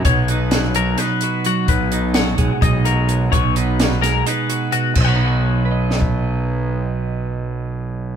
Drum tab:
CC |--------------|--------------|--------------|x-------------|
HH |x-x-x-x-x-x-x-|x-x-x-x-x-x-x-|x-x-x-x-x-x-x-|--------------|
SD |----o---o-----|----o---------|----o-o-------|--------o-----|
BD |o-------------|o-----o-o-----|o-------------|o--------o----|

CC |--------------|
HH |--------------|
SD |--------------|
BD |--------------|